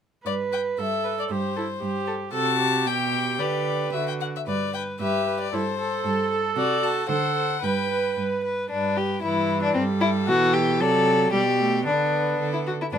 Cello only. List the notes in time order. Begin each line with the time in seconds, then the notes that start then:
0.25 G2
0.78 G2
1.30 G2
1.82 G2
2.33 C3
2.86 B2
3.39 D3
3.93 D3
4.47 G2
5.00 G2
5.53 G2
6.05 G2
6.56 C3
7.09 D3
7.63 G2
8.17 G2
8.71 G2
9.23 G2
9.76 G2
10.28 B2
10.80 C3
11.32 B2
11.85 D3
12.39 D3
12.92 G2